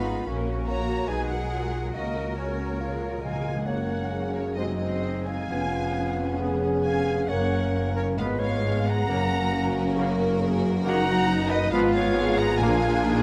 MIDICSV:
0, 0, Header, 1, 12, 480
1, 0, Start_track
1, 0, Key_signature, 6, "major"
1, 0, Tempo, 410678
1, 313, Time_signature, 4, 2, 24, 8
1, 1760, Tempo, 431655
1, 4160, Tempo, 452148
1, 9920, Tempo, 440852
1, 14426, End_track
2, 0, Start_track
2, 0, Title_t, "Violin section"
2, 0, Program_c, 0, 48
2, 0, Note_on_c, 0, 83, 77
2, 315, Note_off_c, 0, 83, 0
2, 789, Note_on_c, 0, 82, 92
2, 1237, Note_off_c, 0, 82, 0
2, 1274, Note_on_c, 0, 80, 95
2, 1515, Note_on_c, 0, 78, 82
2, 1516, Note_off_c, 0, 80, 0
2, 2222, Note_off_c, 0, 78, 0
2, 2234, Note_on_c, 0, 75, 75
2, 2704, Note_off_c, 0, 75, 0
2, 2726, Note_on_c, 0, 73, 61
2, 3664, Note_on_c, 0, 80, 81
2, 3679, Note_off_c, 0, 73, 0
2, 4122, Note_off_c, 0, 80, 0
2, 4163, Note_on_c, 0, 78, 77
2, 4887, Note_off_c, 0, 78, 0
2, 4888, Note_on_c, 0, 73, 85
2, 5117, Note_on_c, 0, 75, 83
2, 5126, Note_off_c, 0, 73, 0
2, 5346, Note_off_c, 0, 75, 0
2, 5359, Note_on_c, 0, 75, 81
2, 5848, Note_off_c, 0, 75, 0
2, 5859, Note_on_c, 0, 80, 104
2, 7261, Note_off_c, 0, 80, 0
2, 7523, Note_on_c, 0, 80, 100
2, 7971, Note_off_c, 0, 80, 0
2, 8003, Note_on_c, 0, 78, 92
2, 8706, Note_off_c, 0, 78, 0
2, 8729, Note_on_c, 0, 73, 92
2, 8814, Note_off_c, 0, 73, 0
2, 8959, Note_on_c, 0, 77, 98
2, 9044, Note_off_c, 0, 77, 0
2, 9197, Note_on_c, 0, 77, 103
2, 9673, Note_off_c, 0, 77, 0
2, 9679, Note_on_c, 0, 82, 120
2, 11125, Note_off_c, 0, 82, 0
2, 11846, Note_on_c, 0, 82, 122
2, 12511, Note_off_c, 0, 82, 0
2, 12542, Note_on_c, 0, 75, 120
2, 12779, Note_on_c, 0, 77, 124
2, 12789, Note_off_c, 0, 75, 0
2, 12866, Note_off_c, 0, 77, 0
2, 13030, Note_on_c, 0, 77, 127
2, 13497, Note_on_c, 0, 82, 127
2, 13503, Note_off_c, 0, 77, 0
2, 13747, Note_off_c, 0, 82, 0
2, 13749, Note_on_c, 0, 80, 111
2, 14426, Note_off_c, 0, 80, 0
2, 14426, End_track
3, 0, Start_track
3, 0, Title_t, "Flute"
3, 0, Program_c, 1, 73
3, 0, Note_on_c, 1, 83, 71
3, 314, Note_off_c, 1, 83, 0
3, 792, Note_on_c, 1, 82, 79
3, 1239, Note_off_c, 1, 82, 0
3, 1271, Note_on_c, 1, 80, 75
3, 1510, Note_off_c, 1, 80, 0
3, 1517, Note_on_c, 1, 78, 76
3, 2245, Note_on_c, 1, 75, 73
3, 2261, Note_off_c, 1, 78, 0
3, 2714, Note_off_c, 1, 75, 0
3, 2721, Note_on_c, 1, 73, 55
3, 3657, Note_off_c, 1, 73, 0
3, 3675, Note_on_c, 1, 77, 78
3, 4156, Note_on_c, 1, 73, 67
3, 4172, Note_off_c, 1, 77, 0
3, 4878, Note_off_c, 1, 73, 0
3, 4884, Note_on_c, 1, 70, 72
3, 4948, Note_off_c, 1, 70, 0
3, 5125, Note_on_c, 1, 72, 78
3, 5189, Note_off_c, 1, 72, 0
3, 5368, Note_on_c, 1, 72, 74
3, 5864, Note_on_c, 1, 77, 80
3, 5880, Note_off_c, 1, 72, 0
3, 7292, Note_off_c, 1, 77, 0
3, 7534, Note_on_c, 1, 77, 89
3, 8004, Note_on_c, 1, 73, 92
3, 8020, Note_off_c, 1, 77, 0
3, 8711, Note_off_c, 1, 73, 0
3, 8717, Note_on_c, 1, 70, 78
3, 8781, Note_off_c, 1, 70, 0
3, 8958, Note_on_c, 1, 71, 103
3, 9179, Note_on_c, 1, 73, 94
3, 9195, Note_off_c, 1, 71, 0
3, 9681, Note_on_c, 1, 78, 103
3, 9697, Note_off_c, 1, 73, 0
3, 11125, Note_off_c, 1, 78, 0
3, 11841, Note_on_c, 1, 78, 124
3, 12509, Note_off_c, 1, 78, 0
3, 12540, Note_on_c, 1, 71, 102
3, 12777, Note_off_c, 1, 71, 0
3, 12784, Note_on_c, 1, 71, 121
3, 13027, Note_off_c, 1, 71, 0
3, 13032, Note_on_c, 1, 73, 112
3, 13509, Note_on_c, 1, 78, 115
3, 13525, Note_off_c, 1, 73, 0
3, 13732, Note_off_c, 1, 78, 0
3, 13738, Note_on_c, 1, 77, 105
3, 14426, Note_off_c, 1, 77, 0
3, 14426, End_track
4, 0, Start_track
4, 0, Title_t, "Violin section"
4, 0, Program_c, 2, 48
4, 0, Note_on_c, 2, 77, 63
4, 299, Note_off_c, 2, 77, 0
4, 775, Note_on_c, 2, 73, 79
4, 1229, Note_off_c, 2, 73, 0
4, 1264, Note_on_c, 2, 71, 74
4, 1509, Note_on_c, 2, 70, 72
4, 1511, Note_off_c, 2, 71, 0
4, 2234, Note_off_c, 2, 70, 0
4, 2235, Note_on_c, 2, 66, 70
4, 2705, Note_off_c, 2, 66, 0
4, 2723, Note_on_c, 2, 66, 52
4, 3893, Note_off_c, 2, 66, 0
4, 4161, Note_on_c, 2, 66, 62
4, 4168, Note_on_c, 2, 61, 57
4, 5083, Note_off_c, 2, 66, 0
4, 5086, Note_off_c, 2, 61, 0
4, 5121, Note_on_c, 2, 68, 61
4, 5123, Note_on_c, 2, 63, 61
4, 6061, Note_off_c, 2, 63, 0
4, 6098, Note_on_c, 2, 61, 66
4, 7964, Note_off_c, 2, 68, 0
4, 8013, Note_on_c, 2, 70, 71
4, 8915, Note_off_c, 2, 61, 0
4, 8920, Note_off_c, 2, 70, 0
4, 8957, Note_on_c, 2, 71, 70
4, 8959, Note_on_c, 2, 65, 73
4, 9877, Note_off_c, 2, 71, 0
4, 9878, Note_off_c, 2, 65, 0
4, 9918, Note_on_c, 2, 66, 86
4, 9918, Note_on_c, 2, 70, 88
4, 12749, Note_off_c, 2, 66, 0
4, 12749, Note_off_c, 2, 70, 0
4, 12785, Note_on_c, 2, 65, 92
4, 12789, Note_on_c, 2, 68, 102
4, 14426, Note_off_c, 2, 65, 0
4, 14426, Note_off_c, 2, 68, 0
4, 14426, End_track
5, 0, Start_track
5, 0, Title_t, "French horn section"
5, 0, Program_c, 3, 60
5, 0, Note_on_c, 3, 59, 65
5, 293, Note_off_c, 3, 59, 0
5, 781, Note_on_c, 3, 58, 81
5, 1233, Note_off_c, 3, 58, 0
5, 1258, Note_on_c, 3, 56, 92
5, 1371, Note_off_c, 3, 56, 0
5, 1495, Note_on_c, 3, 54, 66
5, 2213, Note_off_c, 3, 54, 0
5, 2234, Note_on_c, 3, 51, 72
5, 2704, Note_off_c, 3, 51, 0
5, 2718, Note_on_c, 3, 49, 53
5, 3890, Note_off_c, 3, 49, 0
5, 4157, Note_on_c, 3, 70, 72
5, 4610, Note_off_c, 3, 70, 0
5, 4629, Note_on_c, 3, 68, 71
5, 5117, Note_off_c, 3, 68, 0
5, 5137, Note_on_c, 3, 66, 77
5, 5618, Note_off_c, 3, 66, 0
5, 5629, Note_on_c, 3, 63, 64
5, 6110, Note_on_c, 3, 65, 81
5, 6113, Note_off_c, 3, 63, 0
5, 7035, Note_off_c, 3, 65, 0
5, 7054, Note_on_c, 3, 68, 94
5, 7991, Note_off_c, 3, 68, 0
5, 8003, Note_on_c, 3, 70, 84
5, 8955, Note_on_c, 3, 71, 97
5, 8957, Note_off_c, 3, 70, 0
5, 9434, Note_on_c, 3, 68, 84
5, 9436, Note_off_c, 3, 71, 0
5, 9909, Note_off_c, 3, 68, 0
5, 9919, Note_on_c, 3, 70, 92
5, 10392, Note_on_c, 3, 66, 92
5, 10395, Note_off_c, 3, 70, 0
5, 10870, Note_off_c, 3, 66, 0
5, 10883, Note_on_c, 3, 70, 114
5, 11359, Note_on_c, 3, 68, 97
5, 11363, Note_off_c, 3, 70, 0
5, 11685, Note_off_c, 3, 68, 0
5, 11828, Note_on_c, 3, 66, 105
5, 12297, Note_off_c, 3, 66, 0
5, 12302, Note_on_c, 3, 63, 99
5, 12789, Note_off_c, 3, 63, 0
5, 12791, Note_on_c, 3, 65, 119
5, 13266, Note_off_c, 3, 65, 0
5, 13269, Note_on_c, 3, 68, 103
5, 13748, Note_on_c, 3, 65, 107
5, 13753, Note_off_c, 3, 68, 0
5, 14226, Note_off_c, 3, 65, 0
5, 14240, Note_on_c, 3, 63, 102
5, 14426, Note_off_c, 3, 63, 0
5, 14426, End_track
6, 0, Start_track
6, 0, Title_t, "Clarinet"
6, 0, Program_c, 4, 71
6, 0, Note_on_c, 4, 65, 69
6, 328, Note_on_c, 4, 66, 71
6, 346, Note_off_c, 4, 65, 0
6, 786, Note_off_c, 4, 66, 0
6, 793, Note_on_c, 4, 66, 63
6, 1273, Note_on_c, 4, 63, 64
6, 1291, Note_off_c, 4, 66, 0
6, 1617, Note_off_c, 4, 63, 0
6, 1761, Note_on_c, 4, 65, 62
6, 2246, Note_on_c, 4, 66, 57
6, 2262, Note_off_c, 4, 65, 0
6, 2720, Note_off_c, 4, 66, 0
6, 2727, Note_on_c, 4, 66, 57
6, 3205, Note_on_c, 4, 65, 63
6, 3222, Note_off_c, 4, 66, 0
6, 3917, Note_off_c, 4, 65, 0
6, 4163, Note_on_c, 4, 61, 62
6, 5084, Note_off_c, 4, 61, 0
6, 5118, Note_on_c, 4, 60, 71
6, 6082, Note_off_c, 4, 60, 0
6, 6100, Note_on_c, 4, 61, 71
6, 8959, Note_on_c, 4, 59, 76
6, 8975, Note_off_c, 4, 61, 0
6, 9909, Note_on_c, 4, 61, 87
6, 9925, Note_off_c, 4, 59, 0
6, 11519, Note_off_c, 4, 61, 0
6, 11847, Note_on_c, 4, 63, 87
6, 12793, Note_on_c, 4, 65, 102
6, 12810, Note_off_c, 4, 63, 0
6, 13753, Note_off_c, 4, 65, 0
6, 13760, Note_on_c, 4, 62, 113
6, 14426, Note_off_c, 4, 62, 0
6, 14426, End_track
7, 0, Start_track
7, 0, Title_t, "Viola section"
7, 0, Program_c, 5, 48
7, 77, Note_on_c, 5, 56, 53
7, 79, Note_on_c, 5, 68, 59
7, 195, Note_off_c, 5, 56, 0
7, 196, Note_off_c, 5, 68, 0
7, 200, Note_on_c, 5, 59, 51
7, 200, Note_on_c, 5, 65, 56
7, 315, Note_off_c, 5, 59, 0
7, 315, Note_off_c, 5, 65, 0
7, 320, Note_on_c, 5, 61, 57
7, 320, Note_on_c, 5, 66, 60
7, 426, Note_off_c, 5, 61, 0
7, 426, Note_off_c, 5, 66, 0
7, 443, Note_on_c, 5, 58, 59
7, 444, Note_on_c, 5, 70, 56
7, 549, Note_on_c, 5, 61, 55
7, 551, Note_on_c, 5, 66, 53
7, 555, Note_off_c, 5, 58, 0
7, 556, Note_off_c, 5, 70, 0
7, 668, Note_off_c, 5, 61, 0
7, 669, Note_off_c, 5, 66, 0
7, 669, Note_on_c, 5, 58, 47
7, 671, Note_on_c, 5, 70, 49
7, 786, Note_on_c, 5, 61, 52
7, 786, Note_on_c, 5, 66, 53
7, 788, Note_off_c, 5, 58, 0
7, 789, Note_off_c, 5, 70, 0
7, 898, Note_off_c, 5, 61, 0
7, 898, Note_off_c, 5, 66, 0
7, 910, Note_on_c, 5, 70, 46
7, 912, Note_on_c, 5, 58, 47
7, 1029, Note_off_c, 5, 70, 0
7, 1030, Note_off_c, 5, 58, 0
7, 1030, Note_on_c, 5, 61, 48
7, 1031, Note_on_c, 5, 66, 51
7, 1149, Note_on_c, 5, 58, 50
7, 1150, Note_off_c, 5, 61, 0
7, 1150, Note_off_c, 5, 66, 0
7, 1151, Note_on_c, 5, 70, 48
7, 1266, Note_on_c, 5, 68, 54
7, 1267, Note_on_c, 5, 54, 56
7, 1270, Note_off_c, 5, 58, 0
7, 1271, Note_off_c, 5, 70, 0
7, 1381, Note_off_c, 5, 68, 0
7, 1382, Note_off_c, 5, 54, 0
7, 1394, Note_on_c, 5, 56, 51
7, 1395, Note_on_c, 5, 66, 50
7, 1510, Note_on_c, 5, 68, 46
7, 1512, Note_on_c, 5, 54, 46
7, 1515, Note_off_c, 5, 56, 0
7, 1516, Note_off_c, 5, 66, 0
7, 1635, Note_off_c, 5, 68, 0
7, 1636, Note_off_c, 5, 54, 0
7, 1637, Note_on_c, 5, 56, 51
7, 1638, Note_on_c, 5, 66, 45
7, 1755, Note_on_c, 5, 68, 52
7, 1757, Note_on_c, 5, 54, 53
7, 1760, Note_off_c, 5, 56, 0
7, 1761, Note_off_c, 5, 66, 0
7, 1867, Note_off_c, 5, 68, 0
7, 1868, Note_off_c, 5, 54, 0
7, 1879, Note_on_c, 5, 56, 47
7, 1879, Note_on_c, 5, 66, 45
7, 1997, Note_off_c, 5, 56, 0
7, 1997, Note_off_c, 5, 66, 0
7, 1998, Note_on_c, 5, 54, 50
7, 2000, Note_on_c, 5, 68, 47
7, 2117, Note_off_c, 5, 54, 0
7, 2118, Note_off_c, 5, 68, 0
7, 2120, Note_on_c, 5, 66, 45
7, 2121, Note_on_c, 5, 56, 48
7, 2231, Note_off_c, 5, 66, 0
7, 2238, Note_off_c, 5, 56, 0
7, 2243, Note_on_c, 5, 61, 51
7, 2245, Note_on_c, 5, 66, 49
7, 2352, Note_off_c, 5, 61, 0
7, 2352, Note_off_c, 5, 66, 0
7, 2367, Note_on_c, 5, 58, 47
7, 2367, Note_on_c, 5, 70, 50
7, 2481, Note_off_c, 5, 58, 0
7, 2481, Note_off_c, 5, 70, 0
7, 2484, Note_on_c, 5, 61, 47
7, 2485, Note_on_c, 5, 66, 46
7, 2599, Note_off_c, 5, 61, 0
7, 2600, Note_off_c, 5, 66, 0
7, 2600, Note_on_c, 5, 58, 44
7, 2601, Note_on_c, 5, 70, 41
7, 2717, Note_off_c, 5, 58, 0
7, 2717, Note_off_c, 5, 70, 0
7, 2724, Note_on_c, 5, 61, 41
7, 2724, Note_on_c, 5, 66, 46
7, 2831, Note_off_c, 5, 61, 0
7, 2831, Note_off_c, 5, 66, 0
7, 2846, Note_on_c, 5, 70, 41
7, 2848, Note_on_c, 5, 58, 44
7, 2959, Note_on_c, 5, 61, 43
7, 2960, Note_off_c, 5, 70, 0
7, 2960, Note_on_c, 5, 66, 45
7, 2961, Note_off_c, 5, 58, 0
7, 3077, Note_off_c, 5, 61, 0
7, 3078, Note_off_c, 5, 66, 0
7, 3081, Note_on_c, 5, 58, 42
7, 3081, Note_on_c, 5, 70, 44
7, 3199, Note_off_c, 5, 58, 0
7, 3199, Note_off_c, 5, 70, 0
7, 3199, Note_on_c, 5, 65, 45
7, 3200, Note_on_c, 5, 53, 48
7, 3309, Note_off_c, 5, 65, 0
7, 3310, Note_off_c, 5, 53, 0
7, 3322, Note_on_c, 5, 68, 41
7, 3324, Note_on_c, 5, 56, 46
7, 3435, Note_on_c, 5, 65, 44
7, 3436, Note_on_c, 5, 53, 46
7, 3438, Note_off_c, 5, 68, 0
7, 3439, Note_off_c, 5, 56, 0
7, 3554, Note_off_c, 5, 53, 0
7, 3554, Note_off_c, 5, 65, 0
7, 3555, Note_on_c, 5, 68, 45
7, 3558, Note_on_c, 5, 56, 43
7, 3674, Note_off_c, 5, 68, 0
7, 3675, Note_off_c, 5, 56, 0
7, 3678, Note_on_c, 5, 65, 50
7, 3680, Note_on_c, 5, 53, 52
7, 3786, Note_off_c, 5, 65, 0
7, 3787, Note_off_c, 5, 53, 0
7, 3794, Note_on_c, 5, 56, 45
7, 3795, Note_on_c, 5, 68, 41
7, 3913, Note_off_c, 5, 56, 0
7, 3913, Note_on_c, 5, 53, 44
7, 3914, Note_off_c, 5, 68, 0
7, 3914, Note_on_c, 5, 65, 47
7, 4028, Note_on_c, 5, 56, 44
7, 4030, Note_on_c, 5, 68, 42
7, 4035, Note_off_c, 5, 53, 0
7, 4035, Note_off_c, 5, 65, 0
7, 4150, Note_on_c, 5, 58, 56
7, 4153, Note_off_c, 5, 58, 0
7, 4153, Note_on_c, 5, 58, 61
7, 4157, Note_off_c, 5, 56, 0
7, 4158, Note_off_c, 5, 68, 0
7, 5079, Note_off_c, 5, 58, 0
7, 5121, Note_on_c, 5, 60, 63
7, 5122, Note_on_c, 5, 56, 61
7, 6060, Note_off_c, 5, 60, 0
7, 6061, Note_off_c, 5, 56, 0
7, 6100, Note_on_c, 5, 59, 67
7, 6102, Note_on_c, 5, 61, 64
7, 7964, Note_off_c, 5, 59, 0
7, 8012, Note_on_c, 5, 58, 68
7, 8916, Note_off_c, 5, 61, 0
7, 8920, Note_off_c, 5, 58, 0
7, 8956, Note_on_c, 5, 56, 74
7, 8956, Note_on_c, 5, 59, 72
7, 9877, Note_off_c, 5, 56, 0
7, 9877, Note_off_c, 5, 59, 0
7, 9914, Note_on_c, 5, 61, 84
7, 9915, Note_on_c, 5, 58, 76
7, 11792, Note_off_c, 5, 61, 0
7, 11841, Note_on_c, 5, 63, 83
7, 12747, Note_off_c, 5, 58, 0
7, 12751, Note_off_c, 5, 63, 0
7, 12799, Note_on_c, 5, 59, 90
7, 12799, Note_on_c, 5, 65, 89
7, 13715, Note_off_c, 5, 65, 0
7, 13716, Note_off_c, 5, 59, 0
7, 13760, Note_on_c, 5, 62, 98
7, 13763, Note_on_c, 5, 58, 92
7, 14426, Note_off_c, 5, 58, 0
7, 14426, Note_off_c, 5, 62, 0
7, 14426, End_track
8, 0, Start_track
8, 0, Title_t, "Bassoon"
8, 0, Program_c, 6, 70
8, 0, Note_on_c, 6, 59, 72
8, 306, Note_on_c, 6, 58, 67
8, 324, Note_off_c, 6, 59, 0
8, 784, Note_off_c, 6, 58, 0
8, 789, Note_on_c, 6, 58, 63
8, 1271, Note_on_c, 6, 56, 62
8, 1289, Note_off_c, 6, 58, 0
8, 1920, Note_off_c, 6, 56, 0
8, 2236, Note_on_c, 6, 58, 55
8, 2681, Note_off_c, 6, 58, 0
8, 2722, Note_on_c, 6, 61, 68
8, 3166, Note_off_c, 6, 61, 0
8, 3201, Note_on_c, 6, 58, 72
8, 3669, Note_on_c, 6, 56, 56
8, 3686, Note_off_c, 6, 58, 0
8, 4151, Note_off_c, 6, 56, 0
8, 4157, Note_on_c, 6, 58, 57
8, 5124, Note_on_c, 6, 56, 61
8, 5140, Note_off_c, 6, 58, 0
8, 6102, Note_off_c, 6, 56, 0
8, 6109, Note_on_c, 6, 59, 70
8, 7973, Note_off_c, 6, 59, 0
8, 8014, Note_on_c, 6, 58, 69
8, 8958, Note_on_c, 6, 56, 76
8, 8974, Note_off_c, 6, 58, 0
8, 9732, Note_off_c, 6, 56, 0
8, 9913, Note_on_c, 6, 58, 84
8, 12426, Note_off_c, 6, 58, 0
8, 12793, Note_on_c, 6, 59, 93
8, 13758, Note_on_c, 6, 58, 105
8, 13774, Note_off_c, 6, 59, 0
8, 14426, Note_off_c, 6, 58, 0
8, 14426, End_track
9, 0, Start_track
9, 0, Title_t, "Trombone section"
9, 0, Program_c, 7, 61
9, 4162, Note_on_c, 7, 49, 58
9, 4164, Note_on_c, 7, 58, 62
9, 4331, Note_off_c, 7, 49, 0
9, 4332, Note_off_c, 7, 58, 0
9, 5131, Note_on_c, 7, 48, 68
9, 5132, Note_on_c, 7, 56, 62
9, 5296, Note_off_c, 7, 48, 0
9, 5297, Note_off_c, 7, 56, 0
9, 6119, Note_on_c, 7, 49, 65
9, 6120, Note_on_c, 7, 59, 61
9, 6280, Note_off_c, 7, 49, 0
9, 6280, Note_off_c, 7, 59, 0
9, 7052, Note_on_c, 7, 59, 69
9, 7055, Note_on_c, 7, 49, 69
9, 7219, Note_off_c, 7, 59, 0
9, 7221, Note_off_c, 7, 49, 0
9, 8014, Note_on_c, 7, 49, 69
9, 8019, Note_on_c, 7, 58, 66
9, 8179, Note_off_c, 7, 49, 0
9, 8181, Note_off_c, 7, 58, 0
9, 8963, Note_on_c, 7, 47, 77
9, 8965, Note_on_c, 7, 59, 81
9, 9127, Note_off_c, 7, 47, 0
9, 9128, Note_off_c, 7, 59, 0
9, 9912, Note_on_c, 7, 49, 75
9, 9912, Note_on_c, 7, 58, 82
9, 10084, Note_off_c, 7, 49, 0
9, 10084, Note_off_c, 7, 58, 0
9, 10874, Note_on_c, 7, 49, 92
9, 10879, Note_on_c, 7, 58, 88
9, 11046, Note_off_c, 7, 49, 0
9, 11049, Note_off_c, 7, 58, 0
9, 11824, Note_on_c, 7, 58, 90
9, 11825, Note_on_c, 7, 51, 93
9, 11994, Note_off_c, 7, 58, 0
9, 11995, Note_off_c, 7, 51, 0
9, 12787, Note_on_c, 7, 53, 103
9, 12790, Note_on_c, 7, 59, 93
9, 12959, Note_off_c, 7, 53, 0
9, 12961, Note_off_c, 7, 59, 0
9, 13748, Note_on_c, 7, 58, 96
9, 13749, Note_on_c, 7, 53, 90
9, 13920, Note_off_c, 7, 58, 0
9, 13921, Note_off_c, 7, 53, 0
9, 14426, End_track
10, 0, Start_track
10, 0, Title_t, "Timpani"
10, 0, Program_c, 8, 47
10, 3204, Note_on_c, 8, 49, 33
10, 3279, Note_off_c, 8, 49, 0
10, 3291, Note_on_c, 8, 49, 33
10, 3359, Note_off_c, 8, 49, 0
10, 3373, Note_on_c, 8, 49, 37
10, 3442, Note_off_c, 8, 49, 0
10, 3456, Note_on_c, 8, 49, 37
10, 3525, Note_off_c, 8, 49, 0
10, 3538, Note_on_c, 8, 49, 46
10, 3611, Note_off_c, 8, 49, 0
10, 3624, Note_on_c, 8, 49, 53
10, 3691, Note_off_c, 8, 49, 0
10, 3704, Note_on_c, 8, 49, 52
10, 3777, Note_off_c, 8, 49, 0
10, 3791, Note_on_c, 8, 49, 56
10, 3859, Note_off_c, 8, 49, 0
10, 3873, Note_on_c, 8, 49, 69
10, 3945, Note_off_c, 8, 49, 0
10, 3958, Note_on_c, 8, 49, 73
10, 4035, Note_off_c, 8, 49, 0
10, 4049, Note_on_c, 8, 49, 79
10, 4131, Note_off_c, 8, 49, 0
10, 13753, Note_on_c, 8, 46, 113
10, 14426, Note_off_c, 8, 46, 0
10, 14426, End_track
11, 0, Start_track
11, 0, Title_t, "Cello section"
11, 0, Program_c, 10, 48
11, 0, Note_on_c, 10, 63, 71
11, 314, Note_off_c, 10, 63, 0
11, 320, Note_on_c, 10, 61, 67
11, 781, Note_off_c, 10, 61, 0
11, 794, Note_on_c, 10, 66, 68
11, 1273, Note_off_c, 10, 66, 0
11, 1276, Note_on_c, 10, 68, 68
11, 2239, Note_off_c, 10, 68, 0
11, 2244, Note_on_c, 10, 70, 63
11, 3883, Note_off_c, 10, 70, 0
11, 4163, Note_on_c, 10, 42, 67
11, 6064, Note_off_c, 10, 42, 0
11, 6107, Note_on_c, 10, 41, 72
11, 7972, Note_off_c, 10, 41, 0
11, 8013, Note_on_c, 10, 42, 73
11, 8944, Note_off_c, 10, 42, 0
11, 8966, Note_on_c, 10, 44, 80
11, 9916, Note_on_c, 10, 42, 95
11, 9924, Note_off_c, 10, 44, 0
11, 12748, Note_off_c, 10, 42, 0
11, 12794, Note_on_c, 10, 44, 101
11, 13737, Note_off_c, 10, 44, 0
11, 13757, Note_on_c, 10, 46, 102
11, 14426, Note_off_c, 10, 46, 0
11, 14426, End_track
12, 0, Start_track
12, 0, Title_t, "Double bass section"
12, 0, Program_c, 11, 48
12, 0, Note_on_c, 11, 32, 75
12, 276, Note_off_c, 11, 32, 0
12, 318, Note_on_c, 11, 34, 75
12, 1253, Note_off_c, 11, 34, 0
12, 1277, Note_on_c, 11, 35, 64
12, 2220, Note_off_c, 11, 35, 0
12, 2242, Note_on_c, 11, 37, 64
12, 3928, Note_off_c, 11, 37, 0
12, 4159, Note_on_c, 11, 30, 68
12, 6062, Note_off_c, 11, 30, 0
12, 6107, Note_on_c, 11, 29, 75
12, 7972, Note_off_c, 11, 29, 0
12, 8012, Note_on_c, 11, 30, 80
12, 8943, Note_off_c, 11, 30, 0
12, 8960, Note_on_c, 11, 32, 79
12, 9921, Note_off_c, 11, 32, 0
12, 9921, Note_on_c, 11, 30, 92
12, 12750, Note_off_c, 11, 30, 0
12, 12792, Note_on_c, 11, 32, 101
12, 13736, Note_off_c, 11, 32, 0
12, 13755, Note_on_c, 11, 34, 104
12, 14426, Note_off_c, 11, 34, 0
12, 14426, End_track
0, 0, End_of_file